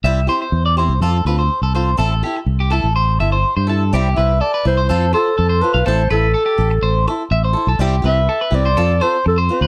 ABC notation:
X:1
M:4/4
L:1/16
Q:1/4=124
K:C
V:1 name="Clarinet"
z16 | z16 | z2 e2 d2 c4 A4 B2 | c2 A8 z6 |
z2 e4 d4 c2 A2 c2 |]
V:2 name="Clean electric guitar"
e2 c c2 d c2 A2 B c2 A c2 | A2 G z2 G A2 c2 e c2 c A2 | G2 B2 A B2 c A2 c2 A c2 f | A2 B2 A G2 z c2 z2 e c2 A |
G2 B2 A B2 c A2 c2 z c2 B |]
V:3 name="Steel-string acoustic guitar"
[G,CEG]2 [CEG]2 z2 [CEG]2 [F,CFA]2 [CFA]2 z2 [CFA]2 | [CEA]2 [EA]2 z2 [EA]2 z2 [EA]2 z2 [EA]2 | [G,CE]2 [CE]2 z2 [CE]2 [CFA]2 [FA]2 z2 [FA]2 | [CEA]2 [EA]2 z2 A2 z2 [EA]2 z2 [EA]2 |
[G,CEG]2 [CEG]2 z2 [CEG]2 [F,CFA]2 [CFA]2 z2 [CF]2 |]
V:4 name="Fingered electric bass" clef=bass
C,,2 z2 E,,3 C,, F,,2 D,,2 z C,,3 | A,,,2 z2 C,,3 A,,,3 G,,,2 z G,,3 | C,,2 C,,2 z2 C,,2 F,,2 z2 F,,2 z B,,, | A,,,2 A,,,2 z2 A,,,2 A,,,2 z2 A,,,2 z B,,, |
C,,2 C,,2 z2 C,,2 F,,2 z2 F,,2 z D,, |]